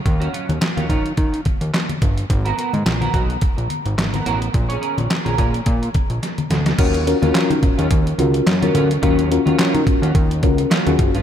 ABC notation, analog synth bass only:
X:1
M:4/4
L:1/16
Q:"Swing 16ths" 1/4=107
K:Ebm
V:1 name="Analog synth bass" clef=bass
E,,2 z E,, z E,, E,2 E,2 z E,, z2 =G,,,2 | A,,,2 z A,, B,,,2 C,,2 z B,,, z A,,, A,,,2 =A,,,2 | B,,,2 z B,,, z B,,, B,,2 B,,2 z B,,, z2 =D,,2 | E,,3 E,, E, E, z E,, E,,2 D,,2 G,,2 =D,,2 |
E,,3 E,, E, E, z E,, E,,2 D,,2 z E,, G,,, =G,,, |]